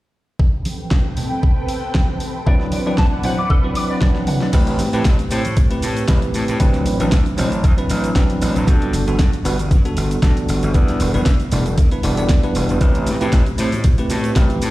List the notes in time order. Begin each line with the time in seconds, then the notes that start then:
0.39 C4 A4 B4 G5, kick
0.65 open hi-hat, high conga
0.91 kick, snare
1.17 open hi-hat, low conga
1.31 high conga
1.43 kick
1.68 open hi-hat
1.95 kick, snare, high conga
2.20 open hi-hat
2.46 F#3 C4 D4 E4 B4 D5 F#5, kick
2.60 snare
2.72 D5, open hi-hat, high conga
2.86 F#3 C4 D4 E4 B4 D5
2.98 A5, kick, snare
3.23 F#3 C4 D4 E4 C5 F#5, open hi-hat, low conga
3.38 D6, high conga
3.50 A4, kick
3.64 F#3 C4 D4 E4 B4
3.75 D6, open hi-hat
3.90 D5
4.01 F#3 C4 D4 E4 B4 D5, kick, snare, high conga
4.15 snare
4.27 F#5, open hi-hat, mid tom
4.41 D5, snare
4.53 A1 A3 C4 E4 G4 B4, kick, closed hi-hat, crash, shaker
4.67 closed hi-hat, shaker
4.79 A2, open hi-hat, high conga, shaker
4.93 A2 A3 C4 E4 G4 B4, closed hi-hat, shaker
5.05 A1, kick, snare, closed hi-hat, shaker
5.19 closed hi-hat, shaker
5.30 A2 A3 C4 E4 G4 C5, open hi-hat, shaker
5.45 closed hi-hat, high conga, shaker
5.56 A1, kick, closed hi-hat, shaker
5.70 A3 C4 E4 G4 B4, closed hi-hat, shaker
5.82 A2, open hi-hat, shaker
5.97 closed hi-hat, shaker
6.08 A1 A3 C4 E4 G4 B4, kick, snare, closed hi-hat, high conga, shaker
6.22 closed hi-hat, shaker
6.34 A2, open hi-hat, shaker
6.48 A2, closed hi-hat, shaker
6.60 D2 F#3 C4 D4 E4 B4, kick, closed hi-hat, shaker
6.74 snare, closed hi-hat, shaker
6.85 A1, open hi-hat, high conga, shaker
7.00 A1 F#3 C4 D4 E4 B4, closed hi-hat, shaker
7.11 D2, kick, snare, closed hi-hat, shaker
7.26 closed hi-hat, shaker
7.37 A1 F#3 C4 D4 E4 C5, open hi-hat, low conga, shaker
7.52 closed hi-hat, high conga, shaker
7.64 D2, kick, closed hi-hat, shaker
7.77 F#3 C4 D4 E4 B4, muted slap bass stroke, closed hi-hat, shaker
7.90 A1, open hi-hat, shaker
8.04 closed hi-hat, shaker
8.15 D2 F#3 C4 D4 E4 B4, kick, snare, closed hi-hat, high conga, shaker
8.30 closed hi-hat, shaker
8.42 A1, open hi-hat, shaker
8.56 A1, closed hi-hat, shaker
8.67 G2 G3 B3 D4 F#4 A4, kick, closed hi-hat, shaker
8.81 closed hi-hat, shaker
8.93 G1, open hi-hat, high conga, shaker
9.07 G1 G3 B3 D4 F#4 A4, closed hi-hat, shaker
9.19 G2, kick, snare, closed hi-hat, shaker
9.33 closed hi-hat, shaker
9.44 G1 G3 B3 D4 F#4 B4, open hi-hat, shaker
9.59 closed hi-hat, high conga, shaker
9.71 G2, kick, closed hi-hat, shaker
9.85 G3 B3 D4 F#4 A4, closed hi-hat, shaker
9.97 G1, open hi-hat, shaker
10.11 closed hi-hat, shaker
10.22 G2 G3 B3 D4 F#4 A4, kick, snare, closed hi-hat, high conga, shaker
10.37 closed hi-hat, shaker
10.49 G1, open hi-hat, shaker
10.62 G1, closed hi-hat, shaker
10.74 E2 G3 B3 D4 E4 B4, kick, closed hi-hat, shaker
10.88 snare, closed hi-hat, shaker
11.00 E1, open hi-hat, high conga, shaker
11.14 E1 G3 B3 D4 E4 B4, closed hi-hat, shaker
11.26 E2, kick, snare, closed hi-hat, shaker
11.40 closed hi-hat, shaker
11.52 E1 G3 B3 D4 E4 D5, open hi-hat, low conga, shaker
11.65 closed hi-hat, high conga, shaker
11.78 E2, kick, closed hi-hat, shaker
11.91 G3 B3 D4 E4 B4, muted slap bass stroke, closed hi-hat, shaker
12.03 E1 G3 B3 D4 E4 D5, open hi-hat, shaker
12.17 G3 B3 D4 E4 D5, closed hi-hat, shaker
12.29 E2, kick, snare, closed hi-hat, high conga, shaker
12.43 G3 B3 D4 E4 B4, closed hi-hat, shaker
12.55 E1, open hi-hat, shaker
12.69 E1, closed hi-hat, shaker
12.81 A1 A3 C4 E4 G4 B4, kick, closed hi-hat, high bongo, shaker
12.94 closed hi-hat, shaker
13.07 A2, open hi-hat, high conga, shaker
13.21 A2 A3 C4 E4 G4 B4, closed hi-hat, high bongo, shaker
13.32 A1, kick, snare, closed hi-hat, shaker
13.46 closed hi-hat, shaker
13.58 A2 A3 C4 E4 G4 C5, open hi-hat, shaker
13.72 closed hi-hat, high bongo, high conga, shaker
13.84 A1, kick, closed hi-hat, shaker
13.98 A3 C4 E4 G4 B4, closed hi-hat, shaker
14.10 A2, open hi-hat, high bongo, shaker
14.24 closed hi-hat, shaker
14.36 A1 A3 C4 E4 G4 B4, kick, snare, closed hi-hat, high conga, shaker
14.50 closed hi-hat, shaker
14.62 A2, open hi-hat, high bongo, shaker